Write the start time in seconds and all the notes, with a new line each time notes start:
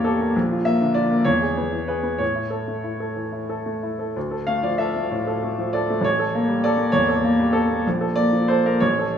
Already playing: A1 E2 E3 A#3 G4 A#4 C#5 D5
0.04 G4 A4
0.21 A#3
0.36 A#1
0.51 F4
0.65 A#3 E5
0.81 D3
0.94 F4 D5
1.10 A#3
1.24 E2 C#5
1.42 G#4
1.57 B3
1.72 E3
1.88 G#4 B4
2.03 B3
2.18 A2 C#5
2.35 E4
2.51 A4
2.68 A3
2.84 E4
3.00 A4
3.16 E3
3.32 E4
3.49 A4
3.66 A3
3.83 E4
3.99 A4
4.16 D2
4.31 A4
4.47 A3 F5
4.63 F3 D5
4.78 A4 E5
4.96 A3
5.11 A2
5.27 A4
5.43 A3
5.58 F3
5.73 A4 D5
5.90 A3
6.01 A1 C#5
6.19 A4
6.35 A#3
6.48 G3
6.64 A4 D5
6.78 A#3
6.92 E2 C#5
7.09 A4
7.24 A#3
7.39 G3
7.53 A4
7.70 A#3
7.87 A#1
8.01 A4
8.16 A#3 D5
8.33 F3
8.48 A4 C5
8.66 A#3 A#4
8.80 A1 C#5
8.99 A4